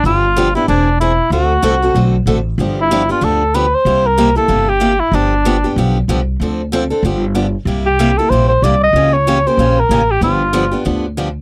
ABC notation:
X:1
M:4/4
L:1/8
Q:"Swing" 1/4=189
K:Gmix
V:1 name="Cor anglais"
F3 E D2 E2 | ^F6 z2 | z E2 F A2 B c- | c _B2 A2 G2 E |
D4 z4 | z8 | z G2 A c c d _e- | _e ^c2 =c2 ^A2 G |
F4 z4 |]
V:2 name="Steel-string acoustic guitar"
[D,F,B,DG] z [D,F,B,DG] [B,DG] [E,^B,D^G] z [E,B,DG] z | [D,A,C^FA] z [D,A,CFA] [CFA] [D,A,CFA] z [D,A,CFA] z | [D,F,B,DG] z [D,F,B,DG] [B,DG] [D,F,B,DG] z [D,F,B,DG] z | [C,G,_B,EG] z [C,G,B,EG] [B,EG] [C,G,B,EG] z [C,G,B,EG] z |
[D,F,B,DG] z [D,F,B,DG] [B,DG] [D,F,B,DG] z [D,F,B,DG] z | [D,F,CDA] z [D,F,CDA] [CDA] [D,F,B,DG] z [D,F,B,DG] z | [C,G,_B,EG] z [C,G,B,EG] [B,EG] [C,G,B,EG] z [C,G,B,EG] z | [^C,E,^A,^CG] z [C,E,A,CG] [A,CG] [C,E,A,CG] z [C,E,A,CG] z |
[D,F,B,DG] z [D,F,B,DG] [B,DG] [D,F,B,DG] z [D,F,B,DG] z |]
V:3 name="Upright bass" clef=bass
G,,,4 E,,,4 | D,,2 C,,2 B,,,2 A,,,2 | G,,,4 D,,4 | C,,4 G,,,4 |
G,,,4 B,,,2 C,,2 | D,,4 G,,,4 | C,,4 _B,,,2 C,,2 | ^C,,4 ^A,,,2 =A,,,2 |
G,,,4 D,,4 |]